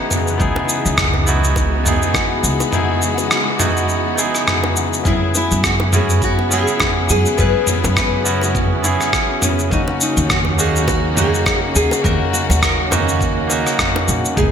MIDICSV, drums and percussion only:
0, 0, Header, 1, 2, 480
1, 0, Start_track
1, 0, Tempo, 582524
1, 325, Time_signature, 4, 2, 24, 8
1, 11961, End_track
2, 0, Start_track
2, 0, Title_t, "Drums"
2, 86, Note_on_c, 9, 60, 49
2, 90, Note_on_c, 9, 45, 75
2, 92, Note_on_c, 9, 69, 70
2, 169, Note_off_c, 9, 60, 0
2, 173, Note_off_c, 9, 45, 0
2, 175, Note_off_c, 9, 69, 0
2, 226, Note_on_c, 9, 69, 44
2, 309, Note_off_c, 9, 69, 0
2, 327, Note_on_c, 9, 36, 98
2, 333, Note_on_c, 9, 69, 30
2, 409, Note_off_c, 9, 36, 0
2, 415, Note_off_c, 9, 69, 0
2, 462, Note_on_c, 9, 60, 81
2, 544, Note_off_c, 9, 60, 0
2, 568, Note_on_c, 9, 69, 75
2, 650, Note_off_c, 9, 69, 0
2, 706, Note_on_c, 9, 69, 42
2, 789, Note_off_c, 9, 69, 0
2, 805, Note_on_c, 9, 37, 107
2, 805, Note_on_c, 9, 45, 82
2, 806, Note_on_c, 9, 36, 98
2, 807, Note_on_c, 9, 69, 33
2, 887, Note_off_c, 9, 37, 0
2, 887, Note_off_c, 9, 45, 0
2, 888, Note_off_c, 9, 36, 0
2, 889, Note_off_c, 9, 69, 0
2, 936, Note_on_c, 9, 60, 46
2, 1018, Note_off_c, 9, 60, 0
2, 1047, Note_on_c, 9, 69, 72
2, 1129, Note_off_c, 9, 69, 0
2, 1187, Note_on_c, 9, 69, 41
2, 1270, Note_off_c, 9, 69, 0
2, 1285, Note_on_c, 9, 36, 99
2, 1286, Note_on_c, 9, 60, 76
2, 1291, Note_on_c, 9, 69, 32
2, 1368, Note_off_c, 9, 36, 0
2, 1368, Note_off_c, 9, 60, 0
2, 1374, Note_off_c, 9, 69, 0
2, 1532, Note_on_c, 9, 45, 74
2, 1534, Note_on_c, 9, 69, 76
2, 1614, Note_off_c, 9, 45, 0
2, 1616, Note_off_c, 9, 69, 0
2, 1668, Note_on_c, 9, 69, 44
2, 1750, Note_off_c, 9, 69, 0
2, 1764, Note_on_c, 9, 36, 108
2, 1766, Note_on_c, 9, 60, 48
2, 1768, Note_on_c, 9, 37, 87
2, 1770, Note_on_c, 9, 69, 30
2, 1847, Note_off_c, 9, 36, 0
2, 1849, Note_off_c, 9, 60, 0
2, 1851, Note_off_c, 9, 37, 0
2, 1853, Note_off_c, 9, 69, 0
2, 2010, Note_on_c, 9, 69, 70
2, 2093, Note_off_c, 9, 69, 0
2, 2144, Note_on_c, 9, 60, 75
2, 2145, Note_on_c, 9, 69, 43
2, 2226, Note_off_c, 9, 60, 0
2, 2227, Note_off_c, 9, 69, 0
2, 2246, Note_on_c, 9, 45, 79
2, 2248, Note_on_c, 9, 69, 32
2, 2328, Note_off_c, 9, 45, 0
2, 2330, Note_off_c, 9, 69, 0
2, 2488, Note_on_c, 9, 69, 75
2, 2571, Note_off_c, 9, 69, 0
2, 2620, Note_on_c, 9, 60, 51
2, 2622, Note_on_c, 9, 69, 43
2, 2702, Note_off_c, 9, 60, 0
2, 2705, Note_off_c, 9, 69, 0
2, 2727, Note_on_c, 9, 37, 106
2, 2729, Note_on_c, 9, 69, 32
2, 2809, Note_off_c, 9, 37, 0
2, 2811, Note_off_c, 9, 69, 0
2, 2962, Note_on_c, 9, 60, 79
2, 2963, Note_on_c, 9, 45, 85
2, 2965, Note_on_c, 9, 69, 75
2, 3044, Note_off_c, 9, 60, 0
2, 3046, Note_off_c, 9, 45, 0
2, 3047, Note_off_c, 9, 69, 0
2, 3107, Note_on_c, 9, 69, 44
2, 3189, Note_off_c, 9, 69, 0
2, 3204, Note_on_c, 9, 69, 31
2, 3287, Note_off_c, 9, 69, 0
2, 3440, Note_on_c, 9, 60, 46
2, 3447, Note_on_c, 9, 69, 74
2, 3522, Note_off_c, 9, 60, 0
2, 3529, Note_off_c, 9, 69, 0
2, 3582, Note_on_c, 9, 37, 29
2, 3584, Note_on_c, 9, 69, 38
2, 3664, Note_off_c, 9, 37, 0
2, 3666, Note_off_c, 9, 69, 0
2, 3688, Note_on_c, 9, 37, 93
2, 3688, Note_on_c, 9, 45, 80
2, 3690, Note_on_c, 9, 69, 29
2, 3770, Note_off_c, 9, 37, 0
2, 3770, Note_off_c, 9, 45, 0
2, 3772, Note_off_c, 9, 69, 0
2, 3820, Note_on_c, 9, 60, 78
2, 3902, Note_off_c, 9, 60, 0
2, 3926, Note_on_c, 9, 69, 74
2, 4009, Note_off_c, 9, 69, 0
2, 4065, Note_on_c, 9, 69, 44
2, 4148, Note_off_c, 9, 69, 0
2, 4163, Note_on_c, 9, 45, 85
2, 4164, Note_on_c, 9, 36, 107
2, 4165, Note_on_c, 9, 69, 34
2, 4245, Note_off_c, 9, 45, 0
2, 4246, Note_off_c, 9, 36, 0
2, 4247, Note_off_c, 9, 69, 0
2, 4405, Note_on_c, 9, 69, 82
2, 4409, Note_on_c, 9, 60, 53
2, 4488, Note_off_c, 9, 69, 0
2, 4491, Note_off_c, 9, 60, 0
2, 4543, Note_on_c, 9, 69, 45
2, 4625, Note_off_c, 9, 69, 0
2, 4645, Note_on_c, 9, 36, 109
2, 4646, Note_on_c, 9, 37, 105
2, 4648, Note_on_c, 9, 69, 35
2, 4727, Note_off_c, 9, 36, 0
2, 4729, Note_off_c, 9, 37, 0
2, 4730, Note_off_c, 9, 69, 0
2, 4777, Note_on_c, 9, 60, 74
2, 4860, Note_off_c, 9, 60, 0
2, 4885, Note_on_c, 9, 45, 83
2, 4887, Note_on_c, 9, 69, 78
2, 4967, Note_off_c, 9, 45, 0
2, 4969, Note_off_c, 9, 69, 0
2, 5023, Note_on_c, 9, 69, 45
2, 5105, Note_off_c, 9, 69, 0
2, 5124, Note_on_c, 9, 36, 100
2, 5127, Note_on_c, 9, 69, 32
2, 5207, Note_off_c, 9, 36, 0
2, 5209, Note_off_c, 9, 69, 0
2, 5263, Note_on_c, 9, 60, 50
2, 5346, Note_off_c, 9, 60, 0
2, 5368, Note_on_c, 9, 69, 80
2, 5450, Note_off_c, 9, 69, 0
2, 5501, Note_on_c, 9, 69, 43
2, 5583, Note_off_c, 9, 69, 0
2, 5600, Note_on_c, 9, 60, 83
2, 5606, Note_on_c, 9, 36, 114
2, 5606, Note_on_c, 9, 37, 96
2, 5606, Note_on_c, 9, 45, 75
2, 5608, Note_on_c, 9, 69, 32
2, 5682, Note_off_c, 9, 60, 0
2, 5688, Note_off_c, 9, 36, 0
2, 5688, Note_off_c, 9, 37, 0
2, 5688, Note_off_c, 9, 45, 0
2, 5690, Note_off_c, 9, 69, 0
2, 5843, Note_on_c, 9, 69, 76
2, 5926, Note_off_c, 9, 69, 0
2, 5979, Note_on_c, 9, 69, 47
2, 6062, Note_off_c, 9, 69, 0
2, 6082, Note_on_c, 9, 69, 33
2, 6084, Note_on_c, 9, 36, 109
2, 6084, Note_on_c, 9, 60, 51
2, 6165, Note_off_c, 9, 69, 0
2, 6167, Note_off_c, 9, 36, 0
2, 6167, Note_off_c, 9, 60, 0
2, 6321, Note_on_c, 9, 45, 81
2, 6323, Note_on_c, 9, 69, 84
2, 6403, Note_off_c, 9, 45, 0
2, 6405, Note_off_c, 9, 69, 0
2, 6462, Note_on_c, 9, 69, 47
2, 6463, Note_on_c, 9, 60, 88
2, 6545, Note_off_c, 9, 69, 0
2, 6546, Note_off_c, 9, 60, 0
2, 6564, Note_on_c, 9, 36, 114
2, 6564, Note_on_c, 9, 37, 104
2, 6566, Note_on_c, 9, 69, 36
2, 6647, Note_off_c, 9, 36, 0
2, 6647, Note_off_c, 9, 37, 0
2, 6649, Note_off_c, 9, 69, 0
2, 6803, Note_on_c, 9, 69, 76
2, 6886, Note_off_c, 9, 69, 0
2, 6934, Note_on_c, 9, 60, 57
2, 6945, Note_on_c, 9, 69, 46
2, 7016, Note_off_c, 9, 60, 0
2, 7027, Note_off_c, 9, 69, 0
2, 7044, Note_on_c, 9, 36, 111
2, 7047, Note_on_c, 9, 45, 78
2, 7048, Note_on_c, 9, 69, 36
2, 7126, Note_off_c, 9, 36, 0
2, 7129, Note_off_c, 9, 45, 0
2, 7131, Note_off_c, 9, 69, 0
2, 7284, Note_on_c, 9, 60, 83
2, 7285, Note_on_c, 9, 69, 82
2, 7367, Note_off_c, 9, 60, 0
2, 7368, Note_off_c, 9, 69, 0
2, 7421, Note_on_c, 9, 37, 33
2, 7423, Note_on_c, 9, 69, 47
2, 7503, Note_off_c, 9, 37, 0
2, 7505, Note_off_c, 9, 69, 0
2, 7524, Note_on_c, 9, 36, 122
2, 7524, Note_on_c, 9, 37, 94
2, 7526, Note_on_c, 9, 69, 32
2, 7606, Note_off_c, 9, 36, 0
2, 7606, Note_off_c, 9, 37, 0
2, 7608, Note_off_c, 9, 69, 0
2, 7763, Note_on_c, 9, 45, 81
2, 7763, Note_on_c, 9, 60, 52
2, 7765, Note_on_c, 9, 69, 83
2, 7845, Note_off_c, 9, 60, 0
2, 7846, Note_off_c, 9, 45, 0
2, 7848, Note_off_c, 9, 69, 0
2, 7903, Note_on_c, 9, 69, 48
2, 7985, Note_off_c, 9, 69, 0
2, 8004, Note_on_c, 9, 36, 106
2, 8012, Note_on_c, 9, 69, 33
2, 8087, Note_off_c, 9, 36, 0
2, 8094, Note_off_c, 9, 69, 0
2, 8138, Note_on_c, 9, 60, 76
2, 8220, Note_off_c, 9, 60, 0
2, 8247, Note_on_c, 9, 69, 84
2, 8329, Note_off_c, 9, 69, 0
2, 8381, Note_on_c, 9, 69, 49
2, 8463, Note_off_c, 9, 69, 0
2, 8484, Note_on_c, 9, 36, 113
2, 8487, Note_on_c, 9, 37, 103
2, 8487, Note_on_c, 9, 45, 77
2, 8489, Note_on_c, 9, 69, 36
2, 8567, Note_off_c, 9, 36, 0
2, 8569, Note_off_c, 9, 37, 0
2, 8569, Note_off_c, 9, 45, 0
2, 8571, Note_off_c, 9, 69, 0
2, 8609, Note_on_c, 9, 60, 49
2, 8691, Note_off_c, 9, 60, 0
2, 8725, Note_on_c, 9, 69, 76
2, 8807, Note_off_c, 9, 69, 0
2, 8867, Note_on_c, 9, 69, 49
2, 8949, Note_off_c, 9, 69, 0
2, 8962, Note_on_c, 9, 60, 85
2, 8965, Note_on_c, 9, 36, 104
2, 8968, Note_on_c, 9, 69, 34
2, 9044, Note_off_c, 9, 60, 0
2, 9047, Note_off_c, 9, 36, 0
2, 9051, Note_off_c, 9, 69, 0
2, 9205, Note_on_c, 9, 45, 78
2, 9207, Note_on_c, 9, 69, 79
2, 9288, Note_off_c, 9, 45, 0
2, 9290, Note_off_c, 9, 69, 0
2, 9348, Note_on_c, 9, 69, 45
2, 9430, Note_off_c, 9, 69, 0
2, 9442, Note_on_c, 9, 60, 55
2, 9444, Note_on_c, 9, 36, 117
2, 9446, Note_on_c, 9, 37, 100
2, 9448, Note_on_c, 9, 69, 32
2, 9524, Note_off_c, 9, 60, 0
2, 9526, Note_off_c, 9, 36, 0
2, 9529, Note_off_c, 9, 37, 0
2, 9531, Note_off_c, 9, 69, 0
2, 9687, Note_on_c, 9, 69, 85
2, 9770, Note_off_c, 9, 69, 0
2, 9817, Note_on_c, 9, 60, 79
2, 9826, Note_on_c, 9, 69, 46
2, 9899, Note_off_c, 9, 60, 0
2, 9908, Note_off_c, 9, 69, 0
2, 9923, Note_on_c, 9, 36, 110
2, 9928, Note_on_c, 9, 45, 69
2, 9930, Note_on_c, 9, 69, 34
2, 10006, Note_off_c, 9, 36, 0
2, 10010, Note_off_c, 9, 45, 0
2, 10012, Note_off_c, 9, 69, 0
2, 10170, Note_on_c, 9, 69, 81
2, 10252, Note_off_c, 9, 69, 0
2, 10298, Note_on_c, 9, 60, 52
2, 10308, Note_on_c, 9, 69, 47
2, 10381, Note_off_c, 9, 60, 0
2, 10390, Note_off_c, 9, 69, 0
2, 10403, Note_on_c, 9, 36, 106
2, 10404, Note_on_c, 9, 37, 101
2, 10406, Note_on_c, 9, 69, 36
2, 10485, Note_off_c, 9, 36, 0
2, 10486, Note_off_c, 9, 37, 0
2, 10488, Note_off_c, 9, 69, 0
2, 10644, Note_on_c, 9, 60, 84
2, 10646, Note_on_c, 9, 45, 79
2, 10648, Note_on_c, 9, 69, 80
2, 10727, Note_off_c, 9, 60, 0
2, 10728, Note_off_c, 9, 45, 0
2, 10730, Note_off_c, 9, 69, 0
2, 10782, Note_on_c, 9, 69, 46
2, 10865, Note_off_c, 9, 69, 0
2, 10882, Note_on_c, 9, 36, 107
2, 10889, Note_on_c, 9, 69, 35
2, 10965, Note_off_c, 9, 36, 0
2, 10971, Note_off_c, 9, 69, 0
2, 11121, Note_on_c, 9, 60, 54
2, 11127, Note_on_c, 9, 69, 75
2, 11203, Note_off_c, 9, 60, 0
2, 11209, Note_off_c, 9, 69, 0
2, 11261, Note_on_c, 9, 37, 29
2, 11263, Note_on_c, 9, 69, 44
2, 11343, Note_off_c, 9, 37, 0
2, 11345, Note_off_c, 9, 69, 0
2, 11363, Note_on_c, 9, 36, 124
2, 11363, Note_on_c, 9, 37, 99
2, 11363, Note_on_c, 9, 45, 72
2, 11365, Note_on_c, 9, 69, 32
2, 11445, Note_off_c, 9, 36, 0
2, 11446, Note_off_c, 9, 37, 0
2, 11446, Note_off_c, 9, 45, 0
2, 11448, Note_off_c, 9, 69, 0
2, 11502, Note_on_c, 9, 60, 87
2, 11585, Note_off_c, 9, 60, 0
2, 11604, Note_on_c, 9, 69, 81
2, 11686, Note_off_c, 9, 69, 0
2, 11744, Note_on_c, 9, 69, 50
2, 11827, Note_off_c, 9, 69, 0
2, 11843, Note_on_c, 9, 36, 100
2, 11843, Note_on_c, 9, 45, 78
2, 11844, Note_on_c, 9, 69, 32
2, 11925, Note_off_c, 9, 36, 0
2, 11925, Note_off_c, 9, 45, 0
2, 11927, Note_off_c, 9, 69, 0
2, 11961, End_track
0, 0, End_of_file